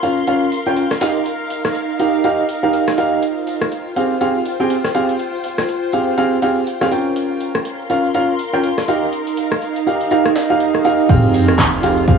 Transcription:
Already playing: A#4 F5 C6
0.03 C#4 F4 A#4 F5, closed hi-hat, tambourine
0.17 tambourine
0.27 C#4 F4 A#4 F5, closed hi-hat, tambourine
0.41 tambourine
0.52 closed hi-hat, tambourine
0.66 C#4 F4 A#4 G5, tambourine
0.77 closed hi-hat, tambourine
0.91 cross-stick, snare, tambourine
1.01 D#4 G4 A#4 F5, snare, closed hi-hat, tambourine
1.15 tambourine
1.25 closed hi-hat, tambourine
1.40 tambourine
1.50 closed hi-hat, tambourine
1.64 cross-stick, snare, tambourine
1.75 closed hi-hat, tambourine
1.89 tambourine
2.00 D#4 G4 A#4 F5, closed hi-hat, tambourine
2.14 tambourine
2.24 D#4 G4 A#4 F5, closed hi-hat, tambourine
2.39 tambourine
2.49 closed hi-hat, tambourine
2.63 D#4 G4 A#4 F5, tambourine
2.73 closed hi-hat, tambourine
2.88 cross-stick, snare
2.98 D#4 G4 A#4 F5, closed hi-hat, tambourine
3.12 tambourine
3.23 F4, closed hi-hat, tambourine
3.30 C5
3.38 tambourine
3.44 G5, closed hi-hat
3.48 tambourine
3.62 cross-stick, tambourine
3.72 closed hi-hat, tambourine
3.86 tambourine
3.96 C4 G4 G#4 F5, closed hi-hat, tambourine
4.10 tambourine
4.21 C4 G4 G#4 F5, closed hi-hat, tambourine
4.35 tambourine
4.45 closed hi-hat, tambourine
4.60 C4 G4 G#4 G5, tambourine
4.70 closed hi-hat, tambourine
4.84 cross-stick, snare, tambourine
4.94 C4 G4 G#4 F5, closed hi-hat, tambourine
5.09 closed hi-hat, tambourine
5.19 closed hi-hat, tambourine
5.34 tambourine
5.43 closed hi-hat, tambourine
5.58 cross-stick, snare, tambourine
5.69 closed hi-hat, tambourine
5.83 tambourine
5.92 C4 G4 G#4 F5, closed hi-hat, tambourine
6.07 tambourine
6.18 C4 G4 G#4 F5, closed hi-hat, tambourine
6.33 tambourine
6.42 C4 G4 G#4 F5, closed hi-hat, tambourine
6.56 tambourine
6.66 closed hi-hat, tambourine
6.81 C4 G4 G#4 F5, cross-stick, snare, tambourine
6.91 C#4 F4 A#4 G5, closed hi-hat, tambourine
7.05 tambourine
7.12 F5, closed hi-hat
7.17 tambourine
7.31 tambourine
7.40 closed hi-hat, tambourine
7.55 cross-stick, tambourine
7.64 closed hi-hat, tambourine
7.69 C6
7.79 tambourine
7.90 C#4 F4 A#4 F5, closed hi-hat, tambourine
8.04 tambourine
8.14 C#4 F4 A#4 F5, closed hi-hat, tambourine
8.29 tambourine
8.39 closed hi-hat, tambourine
8.53 C#4 F4 A#4 G5, tambourine
8.64 closed hi-hat, tambourine
8.77 cross-stick, snare, tambourine
8.88 D#4 G4 A#4 F5, closed hi-hat, tambourine
9.02 tambourine
9.13 closed hi-hat, tambourine
9.27 closed hi-hat, tambourine
9.37 closed hi-hat, tambourine
9.51 cross-stick, tambourine
9.62 closed hi-hat, tambourine
9.76 closed hi-hat, tambourine
9.87 D#4 G4 A#4 F5, tambourine
10.01 closed hi-hat, tambourine
10.10 D#4 G4 A#4 F5, closed hi-hat, tambourine
10.26 cross-stick, tambourine
10.36 snare, closed hi-hat, tambourine
10.50 D#4 G4 A#4 F5, tambourine
10.60 closed hi-hat, tambourine
10.75 cross-stick, tambourine
10.84 D#4 G4 A#4 F5, closed hi-hat, tambourine
10.99 tambourine
11.09 F1 C4 F4 G4 G#4 F5, kick, closed hi-hat, crash, tambourine, sub drop, shaker
11.24 tambourine
11.34 closed hi-hat, open hi-hat, tambourine, shaker
11.47 C5, cross-stick, tambourine, shaker
11.59 kick, snare, clap, closed hi-hat, tambourine, shaker
11.73 tambourine
11.83 F1 C4 G4 G#4 F5, closed hi-hat, open hi-hat, tambourine, shaker
11.97 closed hi-hat, tambourine, shaker
12.03 G5
12.08 F1 C4 G4 G#4 F5, kick, closed hi-hat, tambourine, shaker

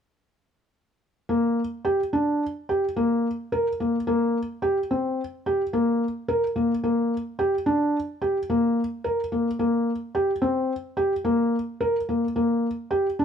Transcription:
1.29 A#3
1.85 G4
2.13 D4
2.69 G4
2.96 A#3
3.52 A#4
3.80 A#3
4.07 A#3
4.62 G4
4.91 C4
5.46 G4
5.73 A#3
6.28 A#4
6.56 A#3
6.84 A#3
7.39 G4
7.66 D4
8.22 G4
8.50 A#3
9.04 A#4
9.32 A#3
9.59 A#3
10.15 G4
10.42 C4
10.97 G4
11.25 A#3
11.81 A#4
12.09 A#3
12.36 A#3
12.91 G4
13.19 D4

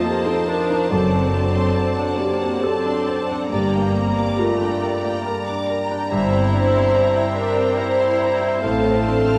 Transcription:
Already playing: F2 F3 C4 D4 D#4 C5 D#5 A5
0.01 A#3 G4 A5
0.05 A4
0.24 C4 D#4 A4 C6
0.45 D4 A#4 C5 A5
0.68 D#4 F5
0.89 F#1 F#2 F#3 C4 A4 D5
1.11 C4 F#5
1.33 D4 A5
1.54 C4 C6
1.75 C5 A5
1.97 D4 F#5
2.18 A#3 G4 C5 D5
2.42 C4 F#5
2.63 C4 A4 A5
2.85 D4 C6
3.07 C5 A5
3.28 D4 F#5
3.50 G1 G2 G3 A#3 G4 D5 A#5
3.74 A#3 G5
3.96 C4 A#5
4.19 A#3 D6
4.38 A3 F4 A#4 A#5
4.61 D4 G5
4.82 A#4 D5
5.04 A#3 G5
5.26 A#4 A#5
5.48 D4 D6
5.69 A#4 A#5
5.91 D4 G5
6.11 G1 G2 E4 C5 E5
6.32 C4 G5
6.54 D4 A#5
6.74 C4 C6
6.95 C5 A#5
7.15 E4 G5
7.37 D4 A#4 C5 E5
7.56 C4 G5
7.77 E4 A#4 C5 A#5
7.99 E4 C6
8.19 C5 A#5
8.41 E4 G5
8.61 A1 A2 A3 C4 A4 F5 A5
8.85 C4 A5
9.06 D4 C6
9.28 C4 F6

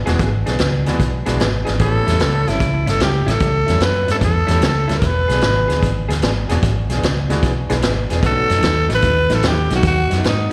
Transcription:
0.06 E1 E3 G#3 B3 D4 E4 F#4 G#4, snare, closed hi-hat
0.19 G#1, kick, snare, closed hi-hat
0.46 B1 E3 B3 D4 G#4, snare, closed hi-hat
0.59 C#2, snare, closed hi-hat
0.86 D2 E3 G#3 B3 D4 E4 F#4 G#4, snare, closed hi-hat
0.99 B1, kick, snare, closed hi-hat
1.26 B1 E3 G#3 B3 D4 E4 F#4 G#4, snare, closed hi-hat
1.40 G#1, snare, closed hi-hat
1.65 G#1 E3 B3 D4 G#4, snare, closed hi-hat
1.79 A1 A3 B3 C#4 E4 G4 A4, kick, snare, closed hi-hat
2.07 E2 A2 G3 C#4 E4, snare, closed hi-hat
2.20 C#2, snare, closed hi-hat
2.46 G1 A2 G3 C#4 E4, snare, closed hi-hat
2.60 C#2, kick, snare, closed hi-hat
2.86 G1 A2 G3 C#4 E4 A4, snare, closed hi-hat
3.00 C#2 G4, snare, closed hi-hat
3.26 A1 A2 G3 C#4 E4 A4, snare, closed hi-hat
3.40 C#2, kick, snare, closed hi-hat
3.66 E2 A2 G3 C#4 E4, snare, closed hi-hat
3.80 F#2 B4, snare, closed hi-hat
4.08 G2 A2 G3 C#4 E4 A4, snare, closed hi-hat
4.21 E2 A4, kick, snare, closed hi-hat
4.47 E2 A2 G3 A3 B3 C#4 E4 G4, snare, closed hi-hat
4.62 C#2, snare, closed hi-hat
4.88 D2 A2 G3 C#4 E4, snare, closed hi-hat
4.98 E1 A#4, kick, closed hi-hat
5.03 B4, snare
5.28 B1 E3 B3 D4 G#4, snare, closed hi-hat
5.41 G#1, snare, closed hi-hat
5.68 D2 E3 B3 D4 G#4, snare, closed hi-hat
5.82 G#1, kick, snare, closed hi-hat
6.09 D2 E3 B3 D4 G#4, snare, closed hi-hat
6.22 G#1, snare, closed hi-hat
6.49 E1 E3 G#3 B3 D4 E4 F#4 G#4, snare, closed hi-hat
6.63 G#1, kick, snare, closed hi-hat
6.89 B1 E3 B3 D4 G#4, snare, closed hi-hat
7.03 C#2, snare, closed hi-hat
7.29 D2 E3 G#3 B3 D4 E4 F#4 G#4, snare, closed hi-hat
7.43 B1, kick, snare, closed hi-hat
7.69 B1 E3 G#3 B3 D4 E4 G#4, snare, closed hi-hat
7.82 G#1, snare, closed hi-hat
8.10 E1 E3 B3 D4 G#4, snare, closed hi-hat
8.23 B1 A3 B3 C#4 D#4 F#4 A4, kick, snare, closed hi-hat
8.49 F#2 B2 F#3 A3 D#4, snare, closed hi-hat
8.62 D#2, snare, closed hi-hat
8.89 A1 B2 F#3 A3 D#4, snare, closed hi-hat
8.95 B4
9.02 D#2, kick, snare, closed hi-hat
9.29 A1 B2 F#3 A3 D#4, snare, closed hi-hat
9.34 A4
9.43 D#2, snare, closed hi-hat
9.47 G4
9.70 B1 B2 F#3 A3 D#4, snare, closed hi-hat
9.75 F#4
9.83 D#2, kick, snare, closed hi-hat
9.87 F#4
10.10 F#2 B2 F#3 A3 D#4, snare, closed hi-hat
10.24 G#2 D#4, snare, closed hi-hat

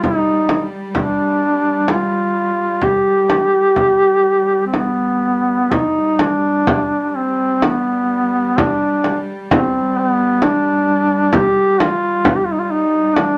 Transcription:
Already playing: G3
0.04 D#4, frame drum
0.49 frame drum
0.95 D4, frame drum
1.88 F4, frame drum
2.82 G4, frame drum
3.30 frame drum
3.76 frame drum
4.67 C4
4.74 B3, frame drum
5.71 G3 D#4, frame drum
6.19 D4, frame drum
6.67 frame drum
7.10 D4
7.17 C4
7.62 B3, frame drum
8.58 D4, frame drum
9.04 frame drum
9.51 C4, frame drum
9.99 B3
10.42 D4, frame drum
11.33 G4, frame drum
11.80 F4, frame drum
12.25 frame drum
12.36 G4
12.45 F4
12.52 D#4
12.59 F4
12.71 D#4
13.15 D4, frame drum

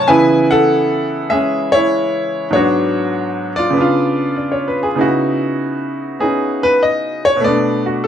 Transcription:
Already playing: C3
0.08 C#3 E3 B3 E4 B4 G#5
0.51 A4 F#5
1.30 G#3 C#4 G#4 E5
1.72 E4 C#5
2.51 G#2 F#3 B3 C#5
2.55 D4 F#4
3.56 F4 D5
3.70 C#3 B3
3.77 D4 F4
4.36 D5
4.52 C#5
4.68 B4
4.83 G#4
4.95 C#3 B3 D#4
4.99 E4 F#4
6.20 B3 C#4 D#4 G#4
6.63 B4
6.83 D#5
7.25 C#5
7.36 B2
7.41 A3 B3 D5
7.47 D4
7.86 F#4
8.04 A4

